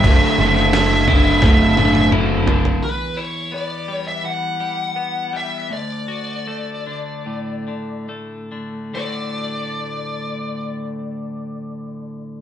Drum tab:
CC |x---x-----------|----------------|----------------|----------------|
SD |---oo---o-------|----------------|----------------|----------------|
T1 |----------oo----|----------------|----------------|----------------|
T2 |------------o---|----------------|----------------|----------------|
FT |--------------oo|----------------|----------------|----------------|
BD |o-----o-o-------|----------------|----------------|----------------|